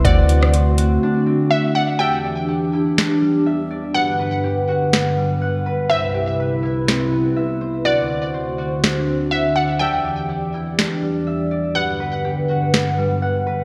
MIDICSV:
0, 0, Header, 1, 7, 480
1, 0, Start_track
1, 0, Key_signature, 1, "minor"
1, 0, Tempo, 487805
1, 48, Time_signature, 4, 2, 24, 8
1, 13422, End_track
2, 0, Start_track
2, 0, Title_t, "Synth pluck"
2, 0, Program_c, 0, 84
2, 45, Note_on_c, 0, 74, 104
2, 1447, Note_off_c, 0, 74, 0
2, 1482, Note_on_c, 0, 76, 87
2, 1713, Note_off_c, 0, 76, 0
2, 1723, Note_on_c, 0, 78, 93
2, 1953, Note_off_c, 0, 78, 0
2, 1958, Note_on_c, 0, 79, 92
2, 3844, Note_off_c, 0, 79, 0
2, 3881, Note_on_c, 0, 78, 101
2, 5765, Note_off_c, 0, 78, 0
2, 5801, Note_on_c, 0, 76, 100
2, 7685, Note_off_c, 0, 76, 0
2, 7725, Note_on_c, 0, 74, 102
2, 9127, Note_off_c, 0, 74, 0
2, 9162, Note_on_c, 0, 76, 86
2, 9393, Note_off_c, 0, 76, 0
2, 9404, Note_on_c, 0, 78, 87
2, 9634, Note_off_c, 0, 78, 0
2, 9637, Note_on_c, 0, 79, 87
2, 11523, Note_off_c, 0, 79, 0
2, 11563, Note_on_c, 0, 78, 99
2, 13422, Note_off_c, 0, 78, 0
2, 13422, End_track
3, 0, Start_track
3, 0, Title_t, "Harp"
3, 0, Program_c, 1, 46
3, 0, Note_on_c, 1, 59, 83
3, 0, Note_on_c, 1, 60, 101
3, 0, Note_on_c, 1, 64, 84
3, 0, Note_on_c, 1, 67, 90
3, 0, Note_on_c, 1, 71, 91
3, 0, Note_on_c, 1, 72, 89
3, 0, Note_on_c, 1, 76, 104
3, 49, Note_on_c, 1, 78, 117
3, 108, Note_off_c, 1, 67, 0
3, 286, Note_on_c, 1, 74, 88
3, 523, Note_off_c, 1, 72, 0
3, 527, Note_on_c, 1, 72, 87
3, 586, Note_off_c, 1, 59, 0
3, 586, Note_off_c, 1, 71, 0
3, 764, Note_on_c, 1, 66, 74
3, 1014, Note_on_c, 1, 62, 100
3, 1240, Note_off_c, 1, 60, 0
3, 1243, Note_on_c, 1, 60, 78
3, 1263, Note_off_c, 1, 76, 0
3, 1420, Note_off_c, 1, 64, 0
3, 1488, Note_off_c, 1, 78, 0
3, 1492, Note_on_c, 1, 78, 88
3, 1721, Note_off_c, 1, 74, 0
3, 1725, Note_on_c, 1, 74, 87
3, 1969, Note_on_c, 1, 76, 96
3, 2203, Note_off_c, 1, 74, 0
3, 2207, Note_on_c, 1, 74, 85
3, 2445, Note_on_c, 1, 67, 83
3, 2475, Note_off_c, 1, 72, 0
3, 2504, Note_off_c, 1, 66, 0
3, 2504, Note_off_c, 1, 78, 0
3, 2688, Note_on_c, 1, 64, 77
3, 2927, Note_off_c, 1, 62, 0
3, 2931, Note_on_c, 1, 62, 94
3, 3162, Note_on_c, 1, 55, 79
3, 3404, Note_off_c, 1, 76, 0
3, 3408, Note_on_c, 1, 76, 90
3, 3642, Note_off_c, 1, 74, 0
3, 3646, Note_on_c, 1, 74, 83
3, 3890, Note_on_c, 1, 78, 96
3, 3937, Note_off_c, 1, 55, 0
3, 3949, Note_off_c, 1, 67, 0
3, 4126, Note_on_c, 1, 71, 90
3, 4185, Note_off_c, 1, 60, 0
3, 4368, Note_on_c, 1, 67, 91
3, 4609, Note_on_c, 1, 66, 75
3, 4849, Note_on_c, 1, 59, 96
3, 5091, Note_on_c, 1, 55, 75
3, 5103, Note_off_c, 1, 76, 0
3, 5258, Note_off_c, 1, 64, 0
3, 5324, Note_off_c, 1, 78, 0
3, 5328, Note_on_c, 1, 78, 87
3, 5464, Note_off_c, 1, 74, 0
3, 5565, Note_off_c, 1, 71, 0
3, 5569, Note_on_c, 1, 71, 88
3, 5685, Note_off_c, 1, 62, 0
3, 5816, Note_on_c, 1, 76, 107
3, 5857, Note_off_c, 1, 55, 0
3, 6039, Note_off_c, 1, 67, 0
3, 6043, Note_on_c, 1, 67, 85
3, 6102, Note_off_c, 1, 66, 0
3, 6102, Note_off_c, 1, 78, 0
3, 6290, Note_off_c, 1, 71, 0
3, 6294, Note_on_c, 1, 71, 87
3, 6524, Note_on_c, 1, 64, 77
3, 6766, Note_on_c, 1, 60, 92
3, 6825, Note_off_c, 1, 59, 0
3, 7007, Note_on_c, 1, 59, 76
3, 7242, Note_off_c, 1, 76, 0
3, 7246, Note_on_c, 1, 76, 95
3, 7488, Note_on_c, 1, 72, 85
3, 7727, Note_on_c, 1, 78, 106
3, 7786, Note_off_c, 1, 67, 0
3, 7965, Note_on_c, 1, 74, 78
3, 8203, Note_off_c, 1, 72, 0
3, 8207, Note_on_c, 1, 72, 83
3, 8266, Note_off_c, 1, 59, 0
3, 8266, Note_off_c, 1, 71, 0
3, 8443, Note_on_c, 1, 66, 70
3, 8695, Note_on_c, 1, 62, 92
3, 8920, Note_off_c, 1, 60, 0
3, 8924, Note_on_c, 1, 60, 71
3, 8941, Note_off_c, 1, 76, 0
3, 9094, Note_off_c, 1, 64, 0
3, 9168, Note_off_c, 1, 78, 0
3, 9172, Note_on_c, 1, 78, 84
3, 9400, Note_off_c, 1, 74, 0
3, 9404, Note_on_c, 1, 74, 81
3, 9647, Note_on_c, 1, 76, 93
3, 9883, Note_off_c, 1, 74, 0
3, 9887, Note_on_c, 1, 74, 85
3, 10124, Note_on_c, 1, 67, 84
3, 10155, Note_off_c, 1, 72, 0
3, 10183, Note_off_c, 1, 66, 0
3, 10183, Note_off_c, 1, 78, 0
3, 10370, Note_on_c, 1, 64, 78
3, 10607, Note_off_c, 1, 62, 0
3, 10611, Note_on_c, 1, 62, 98
3, 10843, Note_on_c, 1, 55, 76
3, 11084, Note_off_c, 1, 76, 0
3, 11088, Note_on_c, 1, 76, 86
3, 11323, Note_off_c, 1, 74, 0
3, 11327, Note_on_c, 1, 74, 80
3, 11572, Note_on_c, 1, 78, 106
3, 11617, Note_off_c, 1, 55, 0
3, 11631, Note_off_c, 1, 67, 0
3, 11807, Note_on_c, 1, 71, 89
3, 11866, Note_off_c, 1, 60, 0
3, 12050, Note_on_c, 1, 67, 89
3, 12292, Note_on_c, 1, 66, 70
3, 12530, Note_on_c, 1, 59, 91
3, 12771, Note_on_c, 1, 55, 78
3, 12783, Note_off_c, 1, 76, 0
3, 12940, Note_off_c, 1, 64, 0
3, 13005, Note_off_c, 1, 78, 0
3, 13009, Note_on_c, 1, 78, 85
3, 13144, Note_off_c, 1, 74, 0
3, 13247, Note_off_c, 1, 71, 0
3, 13251, Note_on_c, 1, 71, 84
3, 13365, Note_off_c, 1, 62, 0
3, 13422, Note_off_c, 1, 55, 0
3, 13422, Note_off_c, 1, 59, 0
3, 13422, Note_off_c, 1, 66, 0
3, 13422, Note_off_c, 1, 67, 0
3, 13422, Note_off_c, 1, 71, 0
3, 13422, Note_off_c, 1, 78, 0
3, 13422, End_track
4, 0, Start_track
4, 0, Title_t, "Kora"
4, 0, Program_c, 2, 46
4, 45, Note_on_c, 2, 60, 73
4, 48, Note_on_c, 2, 66, 67
4, 50, Note_on_c, 2, 74, 76
4, 1948, Note_off_c, 2, 74, 0
4, 1949, Note_off_c, 2, 60, 0
4, 1949, Note_off_c, 2, 66, 0
4, 1963, Note_on_c, 2, 62, 67
4, 1967, Note_on_c, 2, 67, 58
4, 1970, Note_on_c, 2, 76, 71
4, 3868, Note_off_c, 2, 62, 0
4, 3868, Note_off_c, 2, 76, 0
4, 3885, Note_on_c, 2, 59, 67
4, 3885, Note_on_c, 2, 78, 71
4, 5769, Note_off_c, 2, 67, 0
4, 5787, Note_off_c, 2, 78, 0
4, 5788, Note_off_c, 2, 59, 0
4, 5804, Note_on_c, 2, 60, 64
4, 5806, Note_on_c, 2, 71, 62
4, 5807, Note_on_c, 2, 76, 73
4, 7707, Note_off_c, 2, 76, 0
4, 7708, Note_off_c, 2, 71, 0
4, 7724, Note_on_c, 2, 66, 60
4, 7725, Note_on_c, 2, 74, 74
4, 9608, Note_off_c, 2, 60, 0
4, 9627, Note_off_c, 2, 66, 0
4, 9627, Note_off_c, 2, 74, 0
4, 9643, Note_on_c, 2, 62, 63
4, 9648, Note_on_c, 2, 67, 60
4, 9654, Note_on_c, 2, 76, 72
4, 11548, Note_off_c, 2, 62, 0
4, 11549, Note_off_c, 2, 76, 0
4, 11565, Note_on_c, 2, 59, 64
4, 11566, Note_on_c, 2, 78, 74
4, 13422, Note_off_c, 2, 59, 0
4, 13422, Note_off_c, 2, 67, 0
4, 13422, Note_off_c, 2, 78, 0
4, 13422, End_track
5, 0, Start_track
5, 0, Title_t, "Ambient pad"
5, 0, Program_c, 3, 92
5, 49, Note_on_c, 3, 50, 87
5, 49, Note_on_c, 3, 60, 78
5, 49, Note_on_c, 3, 66, 96
5, 50, Note_on_c, 3, 57, 78
5, 1949, Note_off_c, 3, 50, 0
5, 1949, Note_off_c, 3, 60, 0
5, 1949, Note_off_c, 3, 66, 0
5, 1950, Note_off_c, 3, 57, 0
5, 1965, Note_on_c, 3, 40, 83
5, 1965, Note_on_c, 3, 52, 77
5, 1966, Note_on_c, 3, 62, 75
5, 1967, Note_on_c, 3, 67, 90
5, 3867, Note_off_c, 3, 40, 0
5, 3867, Note_off_c, 3, 52, 0
5, 3868, Note_off_c, 3, 62, 0
5, 3868, Note_off_c, 3, 67, 0
5, 3888, Note_on_c, 3, 43, 83
5, 3888, Note_on_c, 3, 50, 74
5, 3888, Note_on_c, 3, 71, 90
5, 3888, Note_on_c, 3, 78, 71
5, 5788, Note_off_c, 3, 50, 0
5, 5789, Note_off_c, 3, 43, 0
5, 5789, Note_off_c, 3, 78, 0
5, 5809, Note_on_c, 3, 48, 75
5, 5811, Note_on_c, 3, 36, 83
5, 5811, Note_on_c, 3, 64, 76
5, 7690, Note_off_c, 3, 71, 0
5, 7709, Note_off_c, 3, 48, 0
5, 7710, Note_off_c, 3, 36, 0
5, 7710, Note_off_c, 3, 64, 0
5, 7727, Note_on_c, 3, 72, 90
5, 7728, Note_on_c, 3, 38, 81
5, 7728, Note_on_c, 3, 50, 76
5, 7728, Note_on_c, 3, 66, 75
5, 9628, Note_off_c, 3, 72, 0
5, 9629, Note_off_c, 3, 38, 0
5, 9629, Note_off_c, 3, 50, 0
5, 9629, Note_off_c, 3, 66, 0
5, 9649, Note_on_c, 3, 52, 75
5, 9650, Note_on_c, 3, 40, 82
5, 9650, Note_on_c, 3, 74, 88
5, 9651, Note_on_c, 3, 67, 73
5, 11549, Note_off_c, 3, 52, 0
5, 11550, Note_off_c, 3, 40, 0
5, 11550, Note_off_c, 3, 67, 0
5, 11550, Note_off_c, 3, 74, 0
5, 11568, Note_on_c, 3, 43, 86
5, 11568, Note_on_c, 3, 71, 90
5, 11568, Note_on_c, 3, 78, 74
5, 11569, Note_on_c, 3, 50, 74
5, 13422, Note_off_c, 3, 43, 0
5, 13422, Note_off_c, 3, 50, 0
5, 13422, Note_off_c, 3, 71, 0
5, 13422, Note_off_c, 3, 78, 0
5, 13422, End_track
6, 0, Start_track
6, 0, Title_t, "808-style bass"
6, 0, Program_c, 4, 38
6, 49, Note_on_c, 4, 38, 116
6, 970, Note_off_c, 4, 38, 0
6, 13422, End_track
7, 0, Start_track
7, 0, Title_t, "Drums"
7, 49, Note_on_c, 9, 36, 106
7, 49, Note_on_c, 9, 42, 85
7, 148, Note_off_c, 9, 36, 0
7, 148, Note_off_c, 9, 42, 0
7, 287, Note_on_c, 9, 42, 68
7, 385, Note_off_c, 9, 42, 0
7, 419, Note_on_c, 9, 37, 101
7, 517, Note_off_c, 9, 37, 0
7, 527, Note_on_c, 9, 42, 69
7, 626, Note_off_c, 9, 42, 0
7, 768, Note_on_c, 9, 42, 74
7, 866, Note_off_c, 9, 42, 0
7, 2934, Note_on_c, 9, 38, 99
7, 3033, Note_off_c, 9, 38, 0
7, 4854, Note_on_c, 9, 38, 97
7, 4952, Note_off_c, 9, 38, 0
7, 6774, Note_on_c, 9, 38, 97
7, 6872, Note_off_c, 9, 38, 0
7, 8696, Note_on_c, 9, 38, 103
7, 8794, Note_off_c, 9, 38, 0
7, 10615, Note_on_c, 9, 38, 96
7, 10713, Note_off_c, 9, 38, 0
7, 12534, Note_on_c, 9, 38, 100
7, 12633, Note_off_c, 9, 38, 0
7, 13422, End_track
0, 0, End_of_file